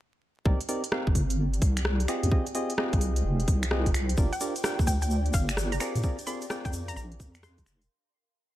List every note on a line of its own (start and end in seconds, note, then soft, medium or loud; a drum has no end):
0.45 0.59 C2 loud
0.45 2.95 C4 medium
0.45 0.59 C4 medium
0.45 0.59 D#4 medium
0.45 0.59 G4 medium
0.45 0.59 A#4 medium
0.45 0.59 D5 medium
0.45 kick loud
0.61 closed hi-hat soft
0.69 0.82 C4 medium
0.69 0.82 D#4 medium
0.69 0.82 G4 medium
0.69 0.82 A#4 medium
0.69 0.82 D5 medium
0.69 open hi-hat loud
0.75 2.81 G4 medium
0.84 closed hi-hat medium
0.92 1.06 C4 medium
0.92 1.06 D#4 medium
0.92 1.06 G4 medium
0.92 1.06 A#4 medium
0.92 1.06 F5 medium
0.92 cross-stick loud
1.07 1.60 G1 medium
1.07 kick loud
1.14 2.95 D5 medium
1.14 kick medium
1.14 open hi-hat loud
1.30 closed hi-hat medium
1.54 closed hi-hat soft
1.62 2.07 C2 medium
1.62 kick loud
1.62 open hi-hat loud
1.77 finger snap medium
1.77 closed hi-hat medium
1.85 cross-stick loud
2.00 closed hi-hat soft
2.08 2.30 C4 medium
2.08 2.30 F4 medium
2.08 4.84 F4 medium
2.08 2.30 G4 medium
2.08 2.30 G#4 medium
2.08 2.30 D#5 medium
2.08 finger snap medium
2.08 open hi-hat loud
2.23 2.31 F2 medium
2.23 closed hi-hat medium
2.28 2.45 C4 medium
2.28 2.45 F4 medium
2.28 2.45 G4 medium
2.28 2.45 G#4 medium
2.28 4.84 C5 medium
2.28 2.45 D#5 medium
2.28 6.65 G5 medium
2.28 kick loud
2.47 closed hi-hat soft
2.55 2.74 C4 medium
2.55 2.74 F4 medium
2.55 2.74 G4 medium
2.55 2.74 G#4 medium
2.55 2.74 D#5 loud
2.55 open hi-hat loud
2.70 closed hi-hat medium
2.78 3.69 C4 medium
2.78 3.69 F4 medium
2.78 3.69 G4 medium
2.78 3.69 G#4 medium
2.78 3.69 D#5 medium
2.78 cross-stick loud
2.93 3.23 C2 medium
2.93 kick loud
2.93 closed hi-hat soft
3.01 open hi-hat loud
3.16 closed hi-hat medium
3.25 3.46 F1 medium
3.40 closed hi-hat soft
3.48 3.88 C2 medium
3.48 kick loud
3.48 open hi-hat loud
3.63 finger snap medium
3.63 closed hi-hat medium
3.71 3.90 C4 medium
3.71 3.90 F4 medium
3.71 3.90 G4 medium
3.71 3.90 G#4 medium
3.71 3.90 D#5 medium
3.71 cross-stick loud
3.86 3.94 F1 medium
3.86 kick medium
3.86 closed hi-hat soft
3.94 4.16 C2 medium
3.94 finger snap medium
3.94 open hi-hat loud
4.09 closed hi-hat medium
4.17 4.31 G1 loud
4.17 7.91 D4 medium
4.17 4.31 D4 medium
4.17 4.31 F4 medium
4.17 4.31 G4 medium
4.17 6.67 G4 medium
4.17 4.31 A#4 medium
4.17 7.91 D5 medium
4.17 4.31 D5 medium
4.17 kick loud
4.17 shaker medium
4.33 4.46 G5 medium
4.33 closed hi-hat soft
4.33 shaker soft
4.41 4.54 D4 medium
4.41 4.54 F4 medium
4.41 4.54 G4 medium
4.41 4.54 A#4 medium
4.41 4.54 D5 medium
4.41 open hi-hat loud
4.41 shaker loud
4.56 closed hi-hat medium
4.56 shaker soft
4.64 4.78 D4 medium
4.64 4.78 F4 medium
4.64 4.78 G4 medium
4.64 4.78 A#4 medium
4.64 6.67 D5 medium
4.64 4.78 G5 medium
4.64 cross-stick loud
4.64 shaker medium
4.79 5.33 D2 medium
4.79 kick loud
4.79 shaker soft
4.87 4.97 G5 medium
4.87 kick medium
4.87 open hi-hat loud
4.87 shaker medium
5.02 5.08 G5 medium
5.02 closed hi-hat medium
5.02 shaker soft
5.10 shaker medium
5.26 closed hi-hat soft
5.34 5.79 G1 medium
5.34 5.51 F5 medium
5.34 kick loud
5.34 open hi-hat loud
5.34 shaker medium
5.49 finger snap medium
5.49 closed hi-hat medium
5.49 shaker soft
5.57 cross-stick loud
5.57 shaker medium
5.72 5.77 A#5 medium
5.72 closed hi-hat soft
5.72 shaker soft
5.80 6.02 C4 medium
5.80 6.02 F4 medium
5.80 6.02 G#4 medium
5.80 6.02 A#4 medium
5.80 7.90 A#4 medium
5.80 6.02 D5 medium
5.80 5.90 A#5 medium
5.80 finger snap medium
5.80 open hi-hat loud
5.80 shaker medium
5.95 6.03 A#2 medium
5.95 closed hi-hat medium
5.95 shaker soft
6.03 6.17 C4 medium
6.03 6.17 F4 medium
6.03 6.17 G#4 medium
6.03 6.17 A#4 medium
6.03 6.17 D5 medium
6.03 kick loud
6.03 shaker medium
6.08 7.90 F5 medium
6.19 closed hi-hat medium
6.19 shaker soft
6.27 6.46 C4 medium
6.27 6.46 F4 medium
6.27 6.46 G#4 medium
6.27 6.46 A#4 medium
6.27 6.46 D5 loud
6.27 6.45 C6 medium
6.27 open hi-hat loud
6.27 shaker loud
6.41 closed hi-hat medium
6.41 shaker soft
6.50 7.41 C4 medium
6.50 7.41 F4 medium
6.50 7.41 G#4 medium
6.50 7.41 A#4 medium
6.50 7.41 D5 loud
6.50 6.60 G5 medium
6.50 cross-stick loud
6.50 shaker medium
6.65 6.95 F2 medium
6.65 6.70 G5 medium
6.65 kick loud
6.65 closed hi-hat soft
6.65 shaker soft
6.73 7.90 C6 medium
6.73 open hi-hat loud
6.73 shaker loud
6.88 6.94 A#5 medium
6.88 closed hi-hat medium
6.88 shaker soft
6.96 7.18 A#1 medium
6.96 7.06 A#5 medium
6.96 shaker soft
7.12 closed hi-hat soft
7.20 7.60 F2 medium
7.20 kick loud
7.20 open hi-hat loud
7.20 shaker loud
7.35 finger snap medium
7.35 closed hi-hat medium
7.35 shaker soft
7.43 7.90 C6 medium
7.43 cross-stick loud
7.43 shaker medium
7.58 7.66 A#1 loud
7.58 kick medium
7.58 closed hi-hat soft
7.58 shaker soft
7.66 7.88 F1 medium
7.66 finger snap medium
7.66 open hi-hat loud
7.66 shaker medium
7.82 closed hi-hat medium
7.82 shaker soft